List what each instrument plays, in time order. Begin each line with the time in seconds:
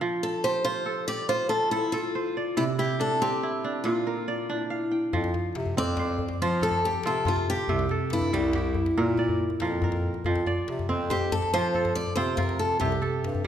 Already playing: kora D4 A#4 D5 F5
0.01 kora F3
0.23 steel-string acoustic guitar A4
0.44 kora G4, steel-string acoustic guitar C5
0.65 kora F4, steel-string acoustic guitar C5
0.86 kora A4
1.07 kora G4, steel-string acoustic guitar D5
1.29 kora F4, steel-string acoustic guitar C5
1.49 kora F4, steel-string acoustic guitar A4
1.71 steel-string acoustic guitar E4, kora A4
1.92 steel-string acoustic guitar F4, kora A4
2.15 kora C5
2.37 kora D5
2.57 kora C3, steel-string acoustic guitar E4
2.79 kora E4, steel-string acoustic guitar G4
3.00 kora D4, steel-string acoustic guitar A4
3.22 kora C4, steel-string acoustic guitar G4
3.43 kora E4
3.64 kora D4
3.84 kora A#2, steel-string acoustic guitar F4
4.07 kora A#4
4.28 kora D5
4.50 kora D4, steel-string acoustic guitar E4
4.70 kora F5
4.91 kora G5
5.13 bass clarinet F2, kora F3, djembe bass
5.24 djembe slap
5.34 djembe tone
5.55 bass clarinet C3, djembe slap
5.66 djembe tone, djembe bass
5.76 bass clarinet F2, kora C4, steel-string acoustic guitar D5, djembe slap
5.87 djembe slap
5.97 kora C5, djembe slap, djembe tone
6.18 djembe bass
6.29 djembe slap, djembe tone
6.40 bass clarinet F3, kora F3 F4, steel-string acoustic guitar C5, djembe slap
6.61 kora A4, steel-string acoustic guitar A4, djembe tone
6.71 djembe bass
6.82 steel-string acoustic guitar G4, djembe slap
6.93 djembe slap, djembe tone
7.03 bass clarinet C3, kora C4 F4, steel-string acoustic guitar A4, djembe slap
7.14 djembe slap
7.25 kora F4, steel-string acoustic guitar F4, djembe tone, djembe bass
7.36 djembe slap
7.50 steel-string acoustic guitar G4
7.57 djembe tone
7.68 bass clarinet C2, kora C3, djembe bass
7.79 djembe slap
7.89 kora A4, djembe tone
8.10 bass clarinet G2, steel-string acoustic guitar E4, djembe slap
8.21 djembe tone, djembe bass
8.32 bass clarinet C2, kora G3, steel-string acoustic guitar E4, djembe slap
8.44 djembe slap
8.53 kora G4, djembe slap, djembe tone
8.74 djembe bass
8.86 djembe slap, djembe tone
8.97 bass clarinet A#2, kora A#2 A#4, djembe slap
9.17 kora D5, djembe tone
9.28 djembe bass
9.40 djembe slap
9.50 djembe slap, djembe tone
9.60 bass clarinet F2, kora F3 A#4, djembe slap
9.71 djembe slap
9.82 kora A#4, djembe tone, djembe bass
9.92 djembe slap
10.14 djembe tone
10.24 bass clarinet F2, kora F3, djembe bass
10.35 djembe slap
10.46 kora D5, djembe tone
10.67 bass clarinet C3, djembe slap
10.79 djembe tone, djembe bass
10.89 bass clarinet F2, kora C4, djembe slap
11.00 djembe slap
11.10 steel-string acoustic guitar G4, kora C5, djembe slap, djembe tone
11.32 steel-string acoustic guitar A4, djembe bass
11.42 djembe slap, djembe tone
11.53 bass clarinet F3, kora F3 F4, steel-string acoustic guitar C5, djembe slap
11.74 kora A4, djembe tone
11.85 djembe slap, djembe bass
11.95 steel-string acoustic guitar D5, djembe slap
12.07 djembe slap, djembe tone
12.15 bass clarinet C3, kora C4 F4, steel-string acoustic guitar C5, djembe slap
12.27 djembe slap
12.37 kora F4, steel-string acoustic guitar A#4, djembe tone, djembe bass
12.49 djembe slap
12.59 steel-string acoustic guitar A4
12.71 djembe tone
12.80 bass clarinet C2, kora C3, steel-string acoustic guitar G4, djembe bass
12.92 djembe slap
13.02 kora A4, djembe slap, djembe tone
13.13 djembe slap
13.23 bass clarinet G2, djembe slap
13.35 djembe tone, djembe bass